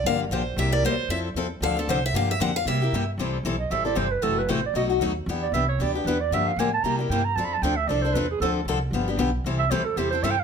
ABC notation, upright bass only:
X:1
M:4/4
L:1/8
Q:"Swing" 1/4=230
K:Cmix
V:1 name="Upright bass" clef=bass
G,,,2 B,,,2 C,,2 D,,2 | F,,2 E,,2 D,,2 C,,2 | G,,2 F,,2 C,2 G,,2 | [K:C] C,,2 B,,,2 A,,,2 G,,,2 |
^F,,,2 A,,,2 B,,,2 ^D,,2 | E,,2 C,,2 D,,2 E,,2 | G,,2 A,,2 C,2 G,,2 | F,,2 D,,2 C,,2 E,,2 |
D,,2 C,,2 G,,,2 B,,,2 | C,,2 D,,2 E,,2 G,,2 |]